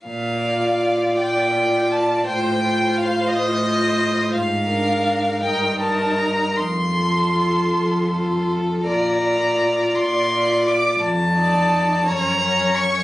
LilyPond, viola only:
\new Staff \with { instrumentName = "Viola" } { \time 6/8 \key bes \major \tempo 4. = 56 r8 f'4. f'4 | f'8 f'4. f'4 | r8 d'4 ees'8 ees'4 | r8 f'4. f'4 |
f'8 f'4. f'4 | r8 ees'4 des'8 des'4 | }